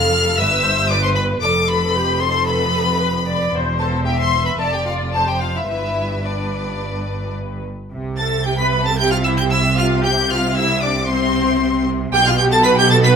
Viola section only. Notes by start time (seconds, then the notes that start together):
Already playing: A4
0.38 B4
0.64 C5
0.90 B4
1.42 A4
1.95 G4
2.22 A4
3.00 B4
3.27 D5
3.54 C5
4.06 E5
4.59 D5
5.15 C5
5.70 B4
8.18 A4
8.46 G4
8.59 B4
8.86 A4
8.98 G4
9.11 F4
9.25 E4
9.38 G4
9.51 E4
9.78 F4
10.04 G4
10.30 F4
10.56 E4
10.83 D4
11.09 C4
12.13 G4
12.26 F4
12.39 G4
12.52 A4
12.65 B4
12.78 G4
12.90 A4
13.04 B4